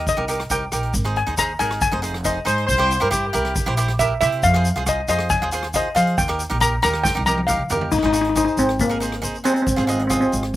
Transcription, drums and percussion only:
0.07 kick loud
0.07 closed hi-hat medium
0.07 shaker medium
0.28 closed hi-hat medium
0.28 shaker medium
0.40 cross-stick medium
0.40 closed hi-hat medium
0.50 kick medium
0.50 closed hi-hat medium
0.50 shaker medium
0.72 cross-stick medium
0.72 closed hi-hat medium
0.72 shaker medium
0.83 closed hi-hat medium
0.93 kick loud
0.93 closed hi-hat medium
0.93 shaker medium
1.05 cross-stick medium
1.16 closed hi-hat medium
1.27 closed hi-hat medium
1.38 kick medium
1.38 cross-stick medium
1.38 closed hi-hat medium
1.38 shaker loud
1.60 closed hi-hat medium
1.60 shaker medium
1.71 cross-stick medium
1.71 closed hi-hat medium
1.81 kick loud
1.81 closed hi-hat medium
1.81 shaker medium
2.03 closed hi-hat medium
2.03 shaker medium
2.14 cross-stick medium
2.14 closed hi-hat medium
2.25 kick medium
2.25 closed hi-hat medium
2.25 shaker medium
2.47 cross-stick medium
2.47 closed hi-hat medium
2.47 shaker medium
2.58 closed hi-hat medium
2.69 kick loud
2.69 closed hi-hat medium
2.69 shaker medium
2.80 cross-stick medium
2.91 closed hi-hat medium
2.91 shaker medium
3.02 closed hi-hat medium
3.12 kick medium
3.12 cross-stick medium
3.12 closed hi-hat medium
3.12 shaker loud
3.34 closed hi-hat medium
3.34 shaker medium
3.45 cross-stick medium
3.45 closed hi-hat medium
3.56 kick loud
3.56 closed hi-hat medium
3.56 shaker medium
3.77 closed hi-hat medium
3.77 shaker medium
3.88 cross-stick medium
3.88 closed hi-hat medium
3.99 kick medium
3.99 closed hi-hat medium
3.99 shaker medium
4.21 cross-stick medium
4.21 closed hi-hat medium
4.21 shaker medium
4.32 closed hi-hat medium
4.43 kick loud
4.43 closed hi-hat medium
4.43 shaker loud
4.54 cross-stick medium
4.65 closed hi-hat medium
4.65 shaker medium
4.76 closed hi-hat medium
4.86 kick medium
4.86 cross-stick medium
4.86 closed hi-hat medium
4.86 shaker loud
5.08 closed hi-hat medium
5.08 shaker medium
5.19 cross-stick medium
5.19 closed hi-hat medium
5.29 kick loud
5.29 closed hi-hat medium
5.29 shaker medium
5.51 closed hi-hat medium
5.51 shaker medium
5.63 cross-stick medium
5.63 closed hi-hat medium
5.74 kick medium
5.74 closed hi-hat medium
5.74 shaker loud
5.96 cross-stick medium
5.96 closed hi-hat medium
5.96 shaker medium
6.07 closed hi-hat medium
6.18 kick loud
6.18 closed hi-hat medium
6.18 shaker loud
6.29 cross-stick medium
6.39 closed hi-hat medium
6.39 shaker medium
6.51 closed hi-hat medium
6.61 kick medium
6.61 cross-stick medium
6.61 closed hi-hat medium
6.61 shaker loud
6.83 closed hi-hat medium
6.83 shaker medium
6.93 cross-stick medium
6.93 closed hi-hat medium
7.05 kick loud
7.05 snare medium
7.05 shaker medium
7.26 high tom medium
7.26 shaker medium
7.38 high tom medium
7.48 kick medium
7.48 mid tom medium
7.48 shaker loud
7.70 floor tom medium
7.70 shaker medium
7.81 floor tom medium
7.92 kick loud
7.92 crash medium
7.92 shaker loud
8.03 cross-stick medium
8.14 closed hi-hat medium
8.14 shaker medium
8.25 closed hi-hat medium
8.36 kick medium
8.36 cross-stick medium
8.36 closed hi-hat medium
8.36 shaker loud
8.47 shaker soft
8.57 closed hi-hat medium
8.57 shaker medium
8.69 cross-stick medium
8.69 closed hi-hat medium
8.79 kick loud
8.79 closed hi-hat medium
8.79 shaker medium
8.91 shaker soft
9.02 closed hi-hat medium
9.02 shaker medium
9.12 cross-stick medium
9.12 closed hi-hat medium
9.23 kick medium
9.23 closed hi-hat medium
9.23 shaker medium
9.35 shaker soft
9.45 cross-stick medium
9.45 closed hi-hat medium
9.45 shaker medium
9.56 closed hi-hat medium
9.56 shaker soft
9.66 kick loud
9.66 closed hi-hat medium
9.66 shaker medium
9.78 cross-stick medium
9.78 shaker soft
9.88 closed hi-hat medium
9.88 shaker medium
9.99 closed hi-hat medium
10.10 kick medium
10.10 cross-stick medium
10.10 closed hi-hat medium
10.10 shaker medium
10.22 shaker soft
10.32 closed hi-hat medium
10.32 shaker medium
10.43 cross-stick medium
10.43 closed hi-hat medium

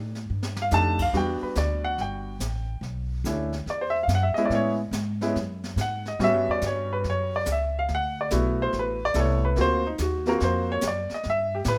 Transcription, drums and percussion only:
0.15 snare soft
0.43 snare medium
0.57 snare medium
0.71 snare medium
0.71 hi-hat pedal medium
0.99 kick medium
0.99 crash medium
1.13 brush sweep medium
1.13 snare soft
1.55 snare medium
1.55 hi-hat pedal medium
1.98 brush sweep soft
1.98 snare soft
2.40 snare medium
2.40 hi-hat pedal medium
2.83 brush sweep soft
2.83 snare soft
3.25 snare medium
3.25 hi-hat pedal medium
3.52 snare soft
3.67 brush sweep medium
3.67 snare soft
4.08 snare medium
4.08 hi-hat pedal medium
4.36 snare soft
4.50 brush sweep medium
4.50 snare soft
4.92 snare medium
4.92 hi-hat pedal medium
5.21 snare soft
5.36 brush sweep medium
5.36 snare soft
5.64 snare medium
5.77 snare medium
5.77 hi-hat pedal medium
6.05 snare soft
6.20 brush sweep soft
6.20 snare soft
6.61 snare medium
6.61 hi-hat pedal medium
7.04 brush sweep medium
7.04 snare soft
7.45 snare medium
7.45 hi-hat pedal medium
7.89 brush sweep soft
7.89 snare medium
8.30 snare medium
8.30 hi-hat pedal medium
8.73 brush sweep medium
8.73 snare soft
9.14 snare medium
9.14 hi-hat pedal medium
9.56 brush sweep soft
9.56 snare soft
9.98 snare medium
9.98 hi-hat pedal medium
10.26 snare soft
10.40 brush sweep soft
10.40 snare soft
10.81 snare medium
10.81 hi-hat pedal medium
11.10 snare soft
11.23 brush sweep medium
11.23 snare medium
11.64 snare medium
11.64 hi-hat pedal medium

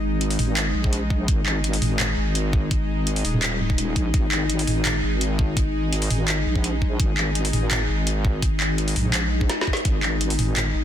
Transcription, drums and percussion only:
0.21 closed hi-hat medium
0.31 open hi-hat medium
0.39 mid tom medium
0.39 open hi-hat medium
0.57 clap loud
0.57 closed hi-hat medium
0.84 kick medium
0.93 closed hi-hat medium
1.10 kick medium
1.28 kick loud
1.28 closed hi-hat medium
1.46 clap medium
1.64 closed hi-hat medium
1.73 open hi-hat medium
1.82 mid tom soft
1.82 open hi-hat medium
2.00 clap loud
2.00 closed hi-hat medium
2.00 mid tom medium
2.35 closed hi-hat medium
2.53 kick loud
2.71 kick loud
2.71 closed hi-hat medium
3.07 closed hi-hat medium
3.16 open hi-hat medium
3.25 open hi-hat medium
3.34 mid tom medium
3.43 clap loud
3.43 closed hi-hat medium
3.60 mid tom soft
3.70 kick medium
3.78 closed hi-hat medium
3.96 kick medium
3.96 closed hi-hat soft
4.14 kick loud
4.14 closed hi-hat medium
4.32 clap medium
4.50 closed hi-hat medium
4.59 open hi-hat medium
4.67 mid tom medium
4.67 open hi-hat medium
4.85 clap loud
4.85 closed hi-hat medium
4.85 mid tom medium
5.21 closed hi-hat medium
5.39 kick loud
5.57 kick loud
5.57 closed hi-hat medium
5.93 closed hi-hat medium
6.02 open hi-hat medium
6.10 mid tom medium
6.10 open hi-hat medium
6.28 clap loud
6.28 closed hi-hat medium
6.56 kick medium
6.64 closed hi-hat medium
6.82 kick medium
7.00 kick loud
7.00 closed hi-hat medium
7.17 clap medium
7.35 closed hi-hat medium
7.45 open hi-hat medium
7.53 mid tom medium
7.53 open hi-hat medium
7.71 clap loud
7.71 closed hi-hat medium
7.71 mid tom medium
8.07 closed hi-hat medium
8.25 kick loud
8.42 kick loud
8.42 closed hi-hat medium
8.60 clap medium
8.78 closed hi-hat medium
8.88 open hi-hat medium
8.96 mid tom soft
8.96 open hi-hat medium
9.01 mid tom soft
9.05 mid tom soft
9.10 mid tom soft
9.14 clap loud
9.14 closed hi-hat medium
9.41 kick medium
9.49 snare medium
9.49 closed hi-hat medium
9.61 snare medium
9.67 kick medium
9.73 snare loud
9.73 closed hi-hat soft
9.85 kick loud
9.85 closed hi-hat medium
10.03 clap medium
10.21 closed hi-hat medium
10.30 open hi-hat medium
10.39 mid tom medium
10.39 open hi-hat medium
10.57 clap loud
10.57 closed hi-hat medium
10.57 mid tom medium

